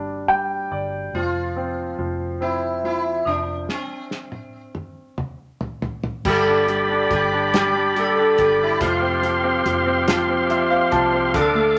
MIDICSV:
0, 0, Header, 1, 6, 480
1, 0, Start_track
1, 0, Tempo, 851064
1, 638, Time_signature, 6, 3, 24, 8
1, 6648, End_track
2, 0, Start_track
2, 0, Title_t, "Tonewheel organ"
2, 0, Program_c, 0, 16
2, 3533, Note_on_c, 0, 67, 57
2, 3534, Note_on_c, 0, 74, 54
2, 3536, Note_on_c, 0, 83, 61
2, 4957, Note_off_c, 0, 74, 0
2, 4958, Note_off_c, 0, 83, 0
2, 4973, Note_on_c, 0, 77, 52
2, 4973, Note_on_c, 0, 84, 61
2, 6379, Note_off_c, 0, 67, 0
2, 6387, Note_off_c, 0, 84, 0
2, 6401, Note_on_c, 0, 86, 68
2, 6403, Note_on_c, 0, 69, 58
2, 6648, Note_off_c, 0, 69, 0
2, 6648, Note_off_c, 0, 77, 0
2, 6648, Note_off_c, 0, 86, 0
2, 6648, End_track
3, 0, Start_track
3, 0, Title_t, "Sitar"
3, 0, Program_c, 1, 104
3, 647, Note_on_c, 1, 65, 82
3, 1098, Note_off_c, 1, 65, 0
3, 1364, Note_on_c, 1, 64, 76
3, 1600, Note_off_c, 1, 64, 0
3, 1607, Note_on_c, 1, 64, 83
3, 1845, Note_on_c, 1, 62, 66
3, 1849, Note_off_c, 1, 64, 0
3, 2083, Note_off_c, 1, 62, 0
3, 2085, Note_on_c, 1, 60, 68
3, 3024, Note_off_c, 1, 60, 0
3, 3542, Note_on_c, 1, 69, 101
3, 3994, Note_off_c, 1, 69, 0
3, 4024, Note_on_c, 1, 67, 86
3, 4256, Note_off_c, 1, 67, 0
3, 4263, Note_on_c, 1, 67, 94
3, 4480, Note_off_c, 1, 67, 0
3, 4506, Note_on_c, 1, 69, 84
3, 4743, Note_off_c, 1, 69, 0
3, 4745, Note_on_c, 1, 67, 81
3, 4860, Note_off_c, 1, 67, 0
3, 4865, Note_on_c, 1, 64, 81
3, 4979, Note_off_c, 1, 64, 0
3, 4982, Note_on_c, 1, 65, 74
3, 6144, Note_off_c, 1, 65, 0
3, 6412, Note_on_c, 1, 69, 91
3, 6648, Note_off_c, 1, 69, 0
3, 6648, End_track
4, 0, Start_track
4, 0, Title_t, "Grand piano"
4, 0, Program_c, 2, 0
4, 0, Control_c, 2, 64, 127
4, 0, Note_on_c, 2, 55, 43
4, 0, Note_on_c, 2, 62, 45
4, 150, Note_off_c, 2, 55, 0
4, 159, Note_on_c, 2, 55, 39
4, 160, Note_on_c, 2, 79, 52
4, 382, Note_off_c, 2, 79, 0
4, 404, Note_on_c, 2, 74, 53
4, 616, Note_off_c, 2, 62, 0
4, 623, Note_off_c, 2, 55, 0
4, 624, Note_off_c, 2, 74, 0
4, 646, Control_c, 2, 64, 0
4, 646, Note_on_c, 2, 53, 55
4, 727, Control_c, 2, 64, 127
4, 881, Note_on_c, 2, 60, 45
4, 1111, Note_off_c, 2, 53, 0
4, 1120, Note_on_c, 2, 53, 43
4, 1350, Note_off_c, 2, 60, 0
4, 1358, Note_on_c, 2, 60, 43
4, 1593, Note_off_c, 2, 53, 0
4, 1601, Note_on_c, 2, 53, 38
4, 2056, Note_off_c, 2, 60, 0
4, 2065, Note_off_c, 2, 53, 0
4, 2085, Control_c, 2, 64, 0
4, 3526, Note_on_c, 2, 55, 66
4, 3635, Control_c, 2, 64, 127
4, 3649, Note_on_c, 2, 62, 46
4, 3754, Note_off_c, 2, 55, 0
4, 3763, Note_on_c, 2, 55, 50
4, 3880, Note_off_c, 2, 62, 0
4, 3888, Note_on_c, 2, 62, 53
4, 3996, Note_off_c, 2, 55, 0
4, 4004, Note_on_c, 2, 55, 46
4, 4120, Note_off_c, 2, 62, 0
4, 4128, Note_on_c, 2, 62, 56
4, 4240, Note_off_c, 2, 55, 0
4, 4249, Note_on_c, 2, 55, 62
4, 4361, Note_off_c, 2, 62, 0
4, 4369, Note_on_c, 2, 62, 48
4, 4477, Note_off_c, 2, 55, 0
4, 4486, Note_on_c, 2, 55, 45
4, 4602, Note_off_c, 2, 62, 0
4, 4611, Note_on_c, 2, 62, 52
4, 4721, Note_off_c, 2, 55, 0
4, 4729, Note_on_c, 2, 55, 46
4, 4838, Note_off_c, 2, 62, 0
4, 4847, Note_on_c, 2, 62, 45
4, 4961, Note_off_c, 2, 55, 0
4, 4963, Note_off_c, 2, 62, 0
4, 4967, Note_on_c, 2, 53, 68
4, 4975, Control_c, 2, 64, 0
4, 5084, Control_c, 2, 64, 127
4, 5086, Note_on_c, 2, 60, 54
4, 5194, Note_off_c, 2, 53, 0
4, 5202, Note_on_c, 2, 53, 54
4, 5313, Note_off_c, 2, 60, 0
4, 5322, Note_on_c, 2, 60, 58
4, 5435, Note_off_c, 2, 53, 0
4, 5443, Note_on_c, 2, 53, 52
4, 5554, Note_off_c, 2, 60, 0
4, 5562, Note_on_c, 2, 60, 58
4, 5674, Note_off_c, 2, 53, 0
4, 5683, Note_on_c, 2, 53, 65
4, 5796, Note_off_c, 2, 60, 0
4, 5804, Note_on_c, 2, 60, 51
4, 5917, Note_off_c, 2, 53, 0
4, 5924, Note_on_c, 2, 76, 64
4, 5926, Note_on_c, 2, 53, 53
4, 6029, Note_off_c, 2, 60, 0
4, 6034, Note_off_c, 2, 76, 0
4, 6036, Note_on_c, 2, 77, 62
4, 6038, Note_on_c, 2, 60, 46
4, 6149, Note_off_c, 2, 77, 0
4, 6151, Note_off_c, 2, 53, 0
4, 6159, Note_on_c, 2, 53, 55
4, 6159, Note_on_c, 2, 81, 66
4, 6270, Note_off_c, 2, 60, 0
4, 6278, Note_on_c, 2, 60, 49
4, 6381, Note_off_c, 2, 81, 0
4, 6391, Note_off_c, 2, 53, 0
4, 6394, Note_off_c, 2, 60, 0
4, 6397, Note_on_c, 2, 50, 71
4, 6405, Control_c, 2, 64, 0
4, 6508, Control_c, 2, 64, 127
4, 6511, Note_on_c, 2, 57, 50
4, 6648, Note_off_c, 2, 50, 0
4, 6648, Note_off_c, 2, 57, 0
4, 6648, End_track
5, 0, Start_track
5, 0, Title_t, "Fingered electric bass"
5, 0, Program_c, 3, 33
5, 0, Note_on_c, 3, 31, 68
5, 377, Note_off_c, 3, 31, 0
5, 401, Note_on_c, 3, 31, 76
5, 625, Note_off_c, 3, 31, 0
5, 638, Note_on_c, 3, 29, 76
5, 1094, Note_off_c, 3, 29, 0
5, 1118, Note_on_c, 3, 29, 71
5, 1815, Note_off_c, 3, 29, 0
5, 1838, Note_on_c, 3, 29, 63
5, 2063, Note_off_c, 3, 29, 0
5, 3528, Note_on_c, 3, 31, 94
5, 3987, Note_off_c, 3, 31, 0
5, 4009, Note_on_c, 3, 31, 89
5, 4706, Note_off_c, 3, 31, 0
5, 4729, Note_on_c, 3, 31, 77
5, 4954, Note_off_c, 3, 31, 0
5, 4969, Note_on_c, 3, 29, 92
5, 5423, Note_off_c, 3, 29, 0
5, 5445, Note_on_c, 3, 29, 93
5, 6137, Note_off_c, 3, 29, 0
5, 6162, Note_on_c, 3, 36, 84
5, 6399, Note_off_c, 3, 36, 0
5, 6399, Note_on_c, 3, 38, 97
5, 6648, Note_off_c, 3, 38, 0
5, 6648, End_track
6, 0, Start_track
6, 0, Title_t, "Drums"
6, 2081, Note_on_c, 9, 38, 48
6, 2137, Note_off_c, 9, 38, 0
6, 2319, Note_on_c, 9, 38, 42
6, 2376, Note_off_c, 9, 38, 0
6, 2436, Note_on_c, 9, 48, 41
6, 2492, Note_off_c, 9, 48, 0
6, 2678, Note_on_c, 9, 47, 45
6, 2734, Note_off_c, 9, 47, 0
6, 2921, Note_on_c, 9, 45, 64
6, 2977, Note_off_c, 9, 45, 0
6, 3162, Note_on_c, 9, 43, 63
6, 3219, Note_off_c, 9, 43, 0
6, 3284, Note_on_c, 9, 43, 79
6, 3340, Note_off_c, 9, 43, 0
6, 3404, Note_on_c, 9, 43, 70
6, 3460, Note_off_c, 9, 43, 0
6, 3525, Note_on_c, 9, 36, 107
6, 3526, Note_on_c, 9, 49, 91
6, 3582, Note_off_c, 9, 36, 0
6, 3583, Note_off_c, 9, 49, 0
6, 3769, Note_on_c, 9, 42, 51
6, 3826, Note_off_c, 9, 42, 0
6, 4008, Note_on_c, 9, 36, 84
6, 4010, Note_on_c, 9, 42, 49
6, 4064, Note_off_c, 9, 36, 0
6, 4066, Note_off_c, 9, 42, 0
6, 4251, Note_on_c, 9, 42, 72
6, 4254, Note_on_c, 9, 38, 89
6, 4308, Note_off_c, 9, 42, 0
6, 4310, Note_off_c, 9, 38, 0
6, 4492, Note_on_c, 9, 42, 46
6, 4548, Note_off_c, 9, 42, 0
6, 4726, Note_on_c, 9, 42, 52
6, 4729, Note_on_c, 9, 36, 88
6, 4782, Note_off_c, 9, 42, 0
6, 4786, Note_off_c, 9, 36, 0
6, 4967, Note_on_c, 9, 42, 92
6, 4968, Note_on_c, 9, 36, 105
6, 5024, Note_off_c, 9, 36, 0
6, 5024, Note_off_c, 9, 42, 0
6, 5208, Note_on_c, 9, 42, 49
6, 5265, Note_off_c, 9, 42, 0
6, 5447, Note_on_c, 9, 42, 55
6, 5503, Note_off_c, 9, 42, 0
6, 5683, Note_on_c, 9, 42, 83
6, 5686, Note_on_c, 9, 38, 92
6, 5740, Note_off_c, 9, 42, 0
6, 5742, Note_off_c, 9, 38, 0
6, 5922, Note_on_c, 9, 42, 48
6, 5979, Note_off_c, 9, 42, 0
6, 6157, Note_on_c, 9, 42, 52
6, 6160, Note_on_c, 9, 36, 81
6, 6213, Note_off_c, 9, 42, 0
6, 6217, Note_off_c, 9, 36, 0
6, 6397, Note_on_c, 9, 42, 77
6, 6398, Note_on_c, 9, 36, 104
6, 6453, Note_off_c, 9, 42, 0
6, 6454, Note_off_c, 9, 36, 0
6, 6648, End_track
0, 0, End_of_file